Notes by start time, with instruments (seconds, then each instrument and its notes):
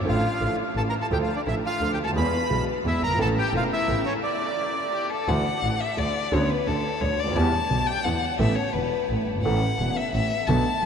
0.00 grand piano G#1
0.04 grand piano A1 A2 F3 A3 D4 A4, double bass A1, violin F4
0.09 bandoneon F5
0.40 grand piano A1 A2 F3 A3 D4 A4, double bass A1
0.75 grand piano A1 A2 E3 A3 C#4 A4, double bass A1, violin A4, bandoneon A5
0.89 violin A#4, bandoneon A#5
1.01 violin A4, bandoneon A5
1.11 double bass D2, grand piano D2 D3 F3 A3 D4 A4, violin G4, bandoneon G5
1.22 violin F4, bandoneon F5
1.35 violin D4, bandoneon D5
1.46 double bass A1, grand piano A1 A2 F3 A3 D4 A4, violin E4, bandoneon E5
1.65 violin F4, bandoneon F5
1.81 double bass D2, grand piano D2 D3 F3 A3 D4 A4
1.93 violin G4, bandoneon G5
1.98 double bass D2
2.03 grand piano C#2 D2, violin A4, bandoneon A5
2.12 grand piano D#2 E3, double bass E2, violin B4
2.16 grand piano E2 G#3 B3 G#4, bandoneon B5
2.50 double bass B1, grand piano B1 B2 E3 G#3 B3 G#4
2.85 double bass E2, grand piano E2 E3 G#3 B3 G#4, violin E4, bandoneon E5
3.02 double bass G1, violin A#4, bandoneon A#5
3.06 grand piano F#1 G1
3.15 grand piano G#1 A1 A2 E3 A3 C#4
3.19 double bass A1, grand piano A4, violin A4, bandoneon A5
3.39 violin G4, bandoneon G5
3.53 double bass E1, grand piano E1 E2 E3 A3 C#4 A4, violin F4, bandoneon F5
3.72 violin E4, bandoneon E5
3.87 double bass A1, grand piano A1 A2 E3 A3 C#4 A4
4.06 violin C#4, bandoneon C#5
4.23 bandoneon D5
4.92 violin G4
5.10 violin A4
5.27 grand piano D2 D3 E3 A3 D4 F#4, double bass D2, violin F#5
5.63 grand piano A1 A2, double bass A1
5.81 violin E5
5.97 grand piano D2 D3, double bass D2, violin D5
6.32 double bass D2, grand piano D2 D3 B3 C#4 F#4, violin C#5
6.50 violin B4
6.67 double bass D2, grand piano D2 D3, violin A4
7.01 double bass D2, grand piano D2 D3, violin C#5
7.19 double bass D2, violin D5
7.24 grand piano C#2 D2
7.31 grand piano D#2, double bass E2
7.35 grand piano E2 E3 G3 B3 G4, violin A5
7.70 double bass B1, grand piano B1 B2
7.87 violin G5
8.04 grand piano E2 E3, double bass E2, violin F#5
8.39 grand piano A1 A2 E3 B3 C#4 A4, double bass A1, violin E5
8.55 violin C#5
8.73 double bass E1, grand piano E1 E2, violin B4
9.09 double bass A1, grand piano A1 A2
9.26 double bass G1
9.32 grand piano F#1
9.37 grand piano G1 G#1
9.43 double bass A1, grand piano A1 A2 E3 A3 C#4 A4, violin F#5
9.79 double bass E1, grand piano E1 E2
9.96 violin E5
10.13 double bass A1, grand piano A1 A2, violin E5
10.47 double bass B1, grand piano B1 B2 F#3 B3 D4 A4, violin A5
10.82 grand piano F#1 F#2, double bass F#1